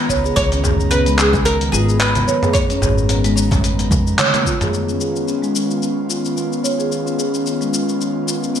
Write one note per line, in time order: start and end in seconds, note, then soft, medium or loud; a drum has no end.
0.00 4.69 D#3 medium
0.00 4.69 B3 medium
0.00 4.72 A#5 medium
0.09 0.30 C#2 medium
0.09 0.24 C#5 loud
0.09 kick medium
0.09 shaker medium
0.24 0.50 G#4 medium
0.24 high bongo medium
0.24 shaker soft
0.36 1.68 C#2 loud
0.36 0.90 C#5 loud
0.36 kick loud
0.36 closed hi-hat medium
0.36 shaker soft
0.52 0.63 C#4 medium
0.52 closed hi-hat soft
0.52 shaker soft
0.64 0.90 G#4 medium
0.64 kick medium
0.64 mid tom medium
0.64 shaker medium
0.80 shaker soft
0.91 1.06 C#4 medium
0.91 1.17 B4 loud
0.91 closed hi-hat medium
0.91 shaker soft
1.06 1.59 G#3 loud
1.06 closed hi-hat soft
1.06 shaker soft
1.18 1.45 G#4 medium
1.18 clap medium
1.18 shaker medium
1.33 kick loud
1.33 high bongo medium
1.33 high conga medium
1.33 low conga medium
1.33 shaker soft
1.45 1.72 A#4 loud
1.45 closed hi-hat medium
1.45 shaker soft
1.61 closed hi-hat soft
1.72 2.22 G#1 medium
1.72 1.99 F4 medium
1.72 1.99 G#4 medium
1.72 shaker medium
1.89 shaker soft
2.00 2.26 B3 medium
2.00 2.53 B4 loud
2.00 clap medium
2.00 closed hi-hat medium
2.00 shaker soft
2.15 closed hi-hat soft
2.15 low conga medium
2.15 shaker soft
2.27 2.42 C#5 loud
2.27 high conga medium
2.27 shaker medium
2.42 2.68 G#4 medium
2.42 mid tom medium
2.42 shaker soft
2.53 4.14 C#5 medium
2.53 kick loud
2.53 closed hi-hat medium
2.53 shaker soft
2.69 2.81 C#4 medium
2.69 closed hi-hat soft
2.69 high conga soft
2.69 shaker soft
2.82 3.90 G#1 loud
2.82 3.08 G#4 medium
2.82 kick medium
2.82 mid tom medium
2.82 shaker medium
2.98 shaker soft
3.09 3.24 C#4 medium
3.09 closed hi-hat medium
3.09 shaker soft
3.24 3.77 G#3 loud
3.24 closed hi-hat soft
3.24 high bongo soft
3.24 shaker soft
3.37 shaker medium
3.51 kick loud
3.51 closed hi-hat soft
3.51 mid tom medium
3.51 high bongo medium
3.51 high conga medium
3.51 low conga medium
3.51 shaker soft
3.64 closed hi-hat medium
3.64 shaker soft
3.79 closed hi-hat soft
3.79 high conga soft
3.79 shaker soft
3.91 4.12 F2 loud
3.91 4.06 G#3 medium
3.91 kick loud
3.91 low conga loud
3.91 shaker medium
4.07 shaker soft
4.19 4.32 C#5 loud
4.19 clap medium
4.19 closed hi-hat medium
4.19 high tom medium
4.19 shaker soft
4.34 closed hi-hat soft
4.34 high tom medium
4.34 shaker soft
4.46 4.60 F4 loud
4.46 kick medium
4.46 shaker medium
4.61 4.73 G#4 medium
4.61 closed hi-hat soft
4.61 mid tom medium
4.61 high bongo medium
4.61 high conga soft
4.61 shaker soft
4.73 8.60 D#3 medium
4.73 8.60 B3 medium
4.73 8.60 C#4 medium
4.73 8.60 F4 medium
4.73 shaker soft
4.89 5.00 C#4 medium
4.89 shaker soft
5.00 5.26 G#4 medium
5.00 shaker medium
5.16 shaker soft
5.28 5.42 C#4 medium
5.28 shaker soft
5.42 5.96 G#3 medium
5.42 shaker soft
5.56 shaker medium
5.71 shaker soft
5.83 shaker soft
6.09 6.35 F4 medium
6.09 shaker medium
6.25 shaker soft
6.36 6.63 B3 medium
6.36 shaker soft
6.53 shaker soft
6.64 6.78 C#5 medium
6.64 shaker medium
6.79 7.05 G#4 medium
6.79 shaker soft
6.92 shaker soft
7.06 7.18 C#4 medium
7.06 shaker soft
7.18 7.45 G#4 medium
7.18 shaker medium
7.34 shaker soft
7.46 7.60 C#4 medium
7.46 shaker soft
7.61 8.14 G#3 medium
7.61 shaker soft
7.74 shaker medium
7.89 shaker soft
8.01 shaker soft
8.27 8.54 F4 medium
8.27 shaker medium
8.43 shaker soft
8.54 8.60 B3 medium
8.54 shaker soft